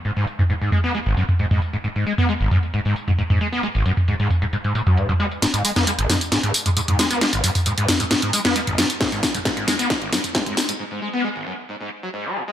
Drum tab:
HH |xxxxxxxxxxxxxxxx|xxxxxxxxxxxxxxxx|xxxxxxxxxxxxxxxx|xxoxxxoxxxoxxxox|
TB |x-xxxxxxx-xxx-xx|x-xxxxxxx-xxx-xx|xxxxxxxxxxxxxxxx|xxxxx-xxx-xxx-xx|
SD |----------------|----------------|----------------|o--o--o-o-----o-|
T2 |---o--o----o-o--|---o--o----o-o--|---o--o----o-o--|---o--o----o-o--|
BD |----------------|----------------|----------------|----------------|

HH |xxooxxoxxxoxxxox|xxoxxxoxxxoxxxox|----------------|
TB |xxxxx-xxx-xxx-xx|xxxxx-xxx-xxx-xx|----------------|
SD |o-----o-o--o--o-|o-o-o-o-o-o-o-o-|----------------|
T2 |---o--o----o-o--|---o--o----o-o--|----------------|
BD |----------------|o-o-o---o---o---|----------------|